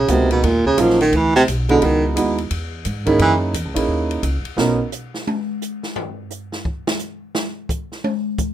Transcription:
Already playing: baritone saxophone C#3
0.08 upright bass C#2, baritone saxophone C3, grand piano G#3 A#3 B3 D#4 F#4, kick, hi-hat pedal, ride
0.31 baritone saxophone B2, ride
0.43 upright bass D#2, baritone saxophone A#2, kick, ride
0.65 baritone saxophone C#3, kick
0.77 upright bass A#1, baritone saxophone F3, grand piano F#3 A#3 C#4 D#4 F4, kick, hi-hat pedal, ride
0.90 snare
1.01 baritone saxophone D#3, snare, ride
1.12 upright bass D2, kick, ride
1.16 baritone saxophone E3
1.35 baritone saxophone C3, snare
1.47 upright bass B1, kick, hi-hat pedal, ride
1.69 baritone saxophone D3, grand piano G#3 B3 D#4 E4 F#4, ride
1.82 upright bass C#2, baritone saxophone D#3, kick, ride
2.15 upright bass D#2, grand piano G#3 B3 D#4 E4 F#4, kick, hi-hat pedal, ride
2.38 ride
2.50 upright bass E2, kick, ride
2.85 upright bass G#2, kick, hi-hat pedal, ride
3.06 baritone saxophone D#3, grand piano A#3 C#4 D#4 E4 G#4, kick, ride
3.19 upright bass F#2, baritone saxophone E3, kick, ride
3.54 upright bass E2, kick, hi-hat pedal, ride
3.65 upright bass C#2
3.74 upright bass A#1, grand piano A#3 C#4 D#4 E4 G#4, ride
3.88 upright bass D#2, kick
4.11 ride
4.23 upright bass C#2, kick, hi-hat pedal, ride
4.44 muted upright bass stroke, ride
4.56 upright bass B1, grand piano B3 C#4 D#4 F#4 A#4, snare
4.92 hi-hat pedal
5.14 snare
5.27 high tom
5.62 hi-hat pedal
5.83 snare
5.96 floor tom
6.30 hi-hat pedal
6.52 snare
6.65 kick
6.87 snare
6.99 hi-hat pedal
7.35 snare
7.69 kick, hi-hat pedal
7.92 snare
8.04 high tom
8.38 kick, hi-hat pedal

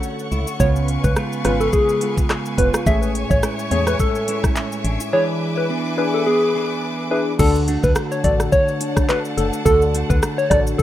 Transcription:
Already playing: clean electric guitar D3 A3 C#4 F#4, string section A4 C#5 F#5 C#6
0.03 shaker
0.19 shaker
0.32 fm bass C#2, clean electric guitar E4, shaker
0.47 clean electric guitar F#4, shaker
0.60 fm bass C#2, clean electric guitar C#3, synth stab B3 C#4 F4, string section B4 F5 G#5, soft synth lead C#5, kick, shaker
0.76 shaker
0.88 closed hi-hat, shaker
1.04 fm bass C#2, soft synth lead B4, kick, shaker
1.16 clean electric guitar G#3 B3 F4, cross-stick, shaker
1.33 shaker
1.45 fm bass G#1, synth stab B3 C#4 F4, soft synth lead B4, cross-stick, closed hi-hat, shaker
1.60 soft synth lead A4, shaker
1.73 clean electric guitar G#3, soft synth lead G#4, kick, shaker
1.89 shaker
2.01 clean electric guitar G#3 B3 F4, closed hi-hat, shaker
2.17 kick, shaker
2.30 cross-stick, clap, shaker
2.46 shaker
2.58 fm bass F1, synth stab B3 C#4 F4, clean electric guitar F4, soft synth lead B4, kick, closed hi-hat, shaker
2.74 cross-stick, shaker
2.86 fm bass A1, clean electric guitar A2, synth stab A3 C#4 G#4, string section C#5 E5 C#6, soft synth lead E5, kick, shaker
3.03 shaker
3.15 closed hi-hat, shaker
3.31 fm bass A1, soft synth lead C#5, kick, shaker
3.43 clean electric guitar G#3 C#4 E4, cross-stick, shaker
3.59 shaker
3.71 fm bass E2, synth stab A3 C#4 G#4, soft synth lead C#5, closed hi-hat, shaker
3.87 soft synth lead B4, cross-stick, shaker
3.99 clean electric guitar G#3, soft synth lead A4, kick, shaker
4.15 shaker
4.28 clean electric guitar G#3 C#4 E4, closed hi-hat, shaker
4.44 kick, cross-stick, shaker
4.56 clap, shaker
4.72 shaker
4.84 fm bass A1, clean electric guitar D4, closed hi-hat, shaker
5.00 clean electric guitar E4, shaker
5.13 clean electric guitar E3, synth stab D4 E4 G#4, string section B4 G#5 D6, soft synth lead C#5
5.57 soft synth lead B4
5.70 clean electric guitar B3 D4 G#4
5.97 synth stab D4 E4 G#4, soft synth lead B4
6.14 soft synth lead A4
6.26 clean electric guitar B3, soft synth lead G#4
6.55 clean electric guitar B3 D4 G#4
7.11 synth stab D4 E4 G#4, clean electric guitar G#4, soft synth lead B4
7.39 fm bass D2, clean electric guitar D3, string section A3 D4 F#5 A5, synth stab D4 F#4 A4, soft synth lead A4, kick, crash, shaker
7.55 shaker
7.68 clean electric guitar A3 D4 F#4, closed hi-hat, shaker
7.83 fm bass D2, soft synth lead B4, kick, shaker
7.95 clean electric guitar A3, cross-stick, shaker
8.12 soft synth lead C#5, shaker
8.24 fm bass A1, synth stab D4 F#4 A4, soft synth lead D5, kick, closed hi-hat, shaker
8.40 cross-stick, shaker
8.52 soft synth lead C#5, kick, shaker
8.68 shaker
8.81 clean electric guitar D4, closed hi-hat, shaker
8.97 kick, cross-stick, shaker
9.09 clean electric guitar A3 D4 F#4, soft synth lead B4, clap, shaker
9.25 shaker
9.37 fm bass F#1, clean electric guitar A3, soft synth lead A4, closed hi-hat, shaker
9.53 shaker
9.65 fm bass D2, clean electric guitar D3, synth stab D4 F#4 A4, soft synth lead A4, kick, shaker
9.82 shaker
9.94 clean electric guitar A3 D4 F#4, closed hi-hat, shaker
10.10 fm bass D2, soft synth lead B4, kick, shaker
10.22 clean electric guitar A3, cross-stick, shaker
10.38 soft synth lead C#5, shaker
10.50 fm bass A1, synth stab D4 F#4 A4, soft synth lead D5, kick, cross-stick, closed hi-hat, shaker
10.67 shaker
10.78 soft synth lead A4, kick, shaker

